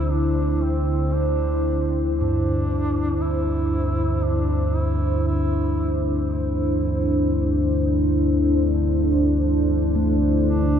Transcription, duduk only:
Already playing: E4
0.12 D4
0.64 C4
1.14 D4
2.18 D4
3.22 E4
4.25 D4
4.76 E4
5.28 E4
10.47 D4

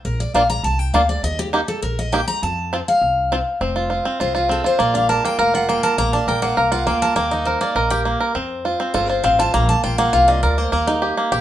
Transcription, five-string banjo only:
0.35 A#3 D4 F4
0.94 A#3 D4 F4
1.53 A#3 D#4 G4
2.13 A#3 D#4 G4
2.73 C4 F4
3.32 C4 F4
3.61 C4
3.76 F4
3.90 F4
4.05 C4
4.20 F4
4.35 F4
4.49 C4
4.64 F4
4.79 A#3
4.94 D4
5.09 A#4
5.25 A#3
5.39 A#4
5.54 F4
5.69 A#3
5.84 A#4
5.98 A#3
6.13 D4
6.28 A#4
6.42 A#3
6.57 A#4
6.72 F4
6.87 A#3
7.02 A#4
7.16 A#3
7.31 D#4
7.46 A#4
7.61 A#3
7.76 A#4
7.91 G4
8.05 A#3
8.20 A#4
8.35 C4
8.65 F4
8.80 C4
8.94 F4
9.10 F4
9.24 C4
9.39 F4
9.54 A#3
9.84 F4
9.98 A#3
10.13 F4
10.28 D4
10.43 A#4
10.58 A#3
10.72 A#3
10.87 D#4
11.02 G4
11.17 A#3
11.32 G4

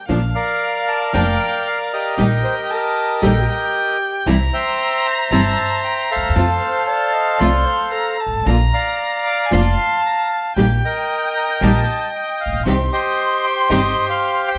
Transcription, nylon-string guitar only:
0.08 F3 A#3 D4 F4
1.13 F3 A#3 D4 F4
2.17 D#3 G3 D#4 G4
3.22 D#3 G3 D#4 G4
4.26 C3 E3 G3 C4 E4
5.32 C3 E3 G3 C4 E4
6.34 C3 F3 A3 C4 F4
7.40 C3 F3 A3 C4 F4
8.46 F3 A#3 D4 F4
9.51 F3 A#3 D4 F4
10.56 D#3 G3 D#4 G4
11.61 D#3 G3 D#4 G4
12.65 C3 D#3 G3 C4 G4
13.70 C3 D#3 G3 C4 G4

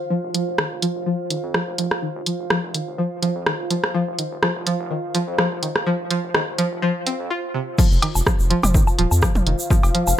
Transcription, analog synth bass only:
0.23 F1
0.47 F1
0.71 F1
0.95 F1
1.30 D#1
1.43 F2
1.67 F1
1.78 F1
2.15 F1
2.39 F1
2.63 F1
2.87 F1
3.22 D#1
3.35 F2
3.59 F1
3.70 F1
4.07 F1
4.31 F1
4.55 F1
4.79 F1
5.14 D#1
5.27 F2
5.51 F1
5.62 F1
5.99 F1
6.23 F1
6.47 F1
6.71 F1
7.07 D#1
7.20 F2
7.91 F1
8.15 F1
8.39 F1
8.63 F1
8.99 D#1
9.11 F2
9.35 F1
9.47 F1
9.83 F1
10.07 F1

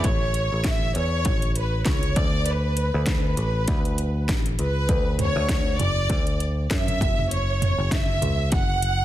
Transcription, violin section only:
0.06 C#5
0.68 E5
0.97 C#5
1.58 B4
1.88 C#5
2.18 D5
2.48 B4
3.09 B4
4.61 B4
5.22 C#5
5.83 D5
6.74 E5
7.34 C#5
7.94 E5
8.54 F#5

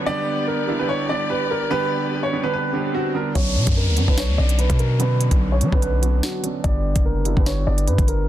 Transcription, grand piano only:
0.06 D3 G3 B3 D4 G4
0.68 D3 G3 B3 D4 E4
0.79 D3 G3 B3 D4 G4
1.10 D3 G3 B3 D4 G4
1.70 D3 G3 B3 D4 G4
2.33 D3 G3 B3 D4 G4
2.43 D3 G3 B3 D4 G4
2.73 D3 G3 B3 D4 G4
3.14 D3 G3 B3 D4 A#4
3.36 D3 F#3 B3
3.97 D3 F#3 B3 C#4 D4
4.07 D3 F#3 B3 C#4 D4
4.37 D3 F#3 B3 C#4 D4
4.99 D3 F#3 B3 C#4 D4
5.61 D3 F#3 B3 C#4 D4
5.72 D3 F#3 B3 C#4 D4
6.02 D3 F#3 B3 C#4 D4
6.43 D3 F#3 B3 C#4 D4
6.64 D3 G3 B3 D4 G4
7.25 D3 G3 B3 D4 E4
7.37 D3 G3 B3 D4 G4
7.67 D3 G3 B3 D4 G4

